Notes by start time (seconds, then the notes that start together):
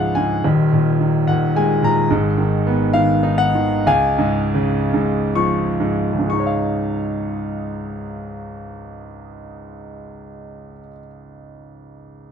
Already playing: C#2 G#2 C#3 F3 F5 F#5
0.15 G#2 G#5
0.44 D#1 D#2
0.73 A#2
1.01 D#3
1.27 A#2 F#5
1.56 G#3 G#5
1.83 A#2 A#5
2.10 G#1 G#2
2.38 D#3
2.67 B3
2.93 D#3 F5
3.23 D#4
3.38 F#5
3.55 D#3
3.86 C#2 F5 G#5
4.19 G#2
4.54 C#3
4.94 G#2
5.35 F3 C#6
5.80 G#2
6.13 C#2
6.19 G#2
6.26 G#3 C#6
6.33 D#4
6.40 C#5
6.46 F5